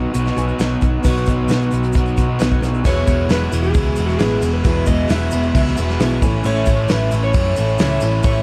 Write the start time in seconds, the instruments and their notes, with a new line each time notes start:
Already playing: overdriven electric guitar B2 F#3 B3 D#4 F#4, twelve-string acoustic guitar B3 D#4 F#4, tonewheel organ B3 D#4 F#4, reed electric piano D#4 F#4 B4
0.13 picked electric bass B1, overdriven electric guitar B2, twelve-string acoustic guitar F#3 B3 D#4 F#4, closed hi-hat, shaker
0.25 snare, shaker
0.36 picked electric bass B1, twelve-string acoustic guitar B3 D#4 F#4, reed electric piano D#4 F#4 B4 G#5, closed hi-hat, shaker
0.48 shaker
0.59 picked electric bass B1, twelve-string acoustic guitar B2 F#3 B3 D#4 F#4, reed electric piano F#5, snare, closed hi-hat, shaker
0.81 picked electric bass B1, twelve-string acoustic guitar B3 D#4 F#4, kick, closed hi-hat, shaker
1.03 picked electric bass B1, twelve-string acoustic guitar B2 F#3 B3 D#4 F#4, reed electric piano B3 D#4 F#4 B4, tonewheel organ B3 F#4, kick, crash, shaker
1.08 tonewheel organ D#4
1.17 closed hi-hat
1.26 picked electric bass B1, twelve-string acoustic guitar B3 D#4 F#4, kick, closed hi-hat, shaker
1.48 picked electric bass B1, twelve-string acoustic guitar B2 F#3 B3 D#4 F#4, snare, closed hi-hat, shaker
1.62 closed hi-hat
1.71 picked electric bass B1, twelve-string acoustic guitar B3 D#4 F#4, closed hi-hat, shaker
1.83 closed hi-hat, shaker
1.93 picked electric bass B1, overdriven electric guitar B2, twelve-string acoustic guitar F#3 B3 D#4, kick, closed hi-hat, shaker
1.97 twelve-string acoustic guitar F#4
2.05 closed hi-hat, shaker
2.17 picked electric bass B2, twelve-string acoustic guitar B3 D#4 F#4, kick, closed hi-hat, shaker
2.39 picked electric bass B1, twelve-string acoustic guitar B2 F#3 B3 D#4 F#4, snare, closed hi-hat, shaker
2.51 kick, shaker
2.55 tonewheel organ A3 B3
2.60 picked electric bass B1, twelve-string acoustic guitar B3 D#4 F#4, tonewheel organ C4 D4, snare, closed hi-hat, shaker
2.66 tonewheel organ E4 F4
2.72 tonewheel organ G4 A4, shaker
2.77 tonewheel organ B4 C5
2.82 picked electric bass E1, twelve-string acoustic guitar E2 B2, overdriven electric guitar E3, tonewheel organ G#3 E4 F#4 D5, reed electric piano E4 F#4 G#4, kick, crash, shaker
2.86 twelve-string acoustic guitar F#3 G#3 B3 E4, reed electric piano B4, electric slide guitar C#5
3.07 picked electric bass E1, overdriven electric guitar E3, twelve-string acoustic guitar F#3 G#3 B3 E4, kick, ride, shaker
3.27 picked electric bass E1, twelve-string acoustic guitar E2 B2 F#3 G#3 B3 E4, overdriven electric guitar E3, electric slide guitar B4, snare, ride, shaker
3.52 picked electric bass E1, overdriven electric guitar E2 B2 E3, twelve-string acoustic guitar F#3 G#3 B3 E4, ride, shaker
3.63 electric slide guitar G#4, shaker
3.73 picked electric bass C#2, overdriven electric guitar E3, twelve-string acoustic guitar F#3 G#3 B3 E4, kick, ride, shaker
3.96 picked electric bass E1, twelve-string acoustic guitar F#3 G#3 B3 E4, ride, shaker
4.01 overdriven electric guitar E3
4.06 electric slide guitar F#4, snare, shaker
4.17 picked electric bass A1, twelve-string acoustic guitar E2 B2 F#3 G#3 B3 E4, electric slide guitar G#4, snare, ride, shaker
4.21 overdriven electric guitar E3
4.42 picked electric bass E1, twelve-string acoustic guitar F#3 G#3 B3 E4, ride, shaker
4.46 overdriven electric guitar E3
4.53 electric slide guitar B4
4.64 picked electric bass E1, twelve-string acoustic guitar E2 B2 F#3 G#3 B3 E4, overdriven electric guitar E3, reed electric piano E4 F#4 G#4 B4, electric slide guitar B4, kick, ride, shaker
4.86 picked electric bass E1, twelve-string acoustic guitar F#3 G#3 B3 E4, electric slide guitar D#5, kick, ride, shaker
4.91 overdriven electric guitar E3
5.08 picked electric bass E1, twelve-string acoustic guitar E2 B2 F#3 G#3 B3 E4, overdriven electric guitar E3, electric slide guitar E5, snare, ride, shaker
5.31 picked electric bass E1, overdriven electric guitar E3, twelve-string acoustic guitar F#3 G#3 B3 E4, ride, shaker
5.35 overdriven electric guitar E2 B2
5.43 shaker
5.54 picked electric bass C#2, overdriven electric guitar E3, twelve-string acoustic guitar F#3 G#3 B3 E4, kick, ride, shaker
5.67 snare
5.77 picked electric bass E1, twelve-string acoustic guitar F#3 G#3 B3 E4, ride, shaker
5.81 overdriven electric guitar E3
5.89 snare, shaker
5.99 picked electric bass B1, twelve-string acoustic guitar E2 B2 F#3 G#3 B3 E4, overdriven electric guitar E3, reed electric piano E4 F#4 G#4 B4 E5, snare, ride, shaker
6.21 picked electric bass A1, overdriven electric guitar A2 E3, tonewheel organ A3 C#4 E4, twelve-string acoustic guitar A3 C#4 E4, reed electric piano C#4 E4 A4 C#5 G#5, kick, ride, shaker
6.44 picked electric bass A1, twelve-string acoustic guitar A2 E3 A3 C#4 E4, electric slide guitar C#5, crash, shaker
6.66 picked electric bass A1, twelve-string acoustic guitar A3 C#4 E4, kick, ride, shaker
6.88 picked electric bass A1, twelve-string acoustic guitar A2 E3 A3 C#4 E4, electric slide guitar B4, snare, ride, shaker
7.11 picked electric bass A1, overdriven electric guitar E3, twelve-string acoustic guitar A3 C#4 E4, ride, shaker
7.15 overdriven electric guitar A2
7.22 electric slide guitar C#5, shaker
7.33 picked electric bass F#2, twelve-string acoustic guitar E3 A3 C#4 E4, kick, ride, shaker
7.56 picked electric bass A1, twelve-string acoustic guitar A3 C#4 E4, ride, shaker
7.68 shaker
7.78 picked electric bass C#2, twelve-string acoustic guitar A2 E3 A3 C#4 E4, snare, ride, shaker
8.00 picked electric bass A1, twelve-string acoustic guitar A3 C#4 E4, reed electric piano C#4 E4 A4 C#5, ride, shaker
8.23 picked electric bass A1, twelve-string acoustic guitar A2 E3 A3 C#4 E4, electric slide guitar C#5, kick, ride, shaker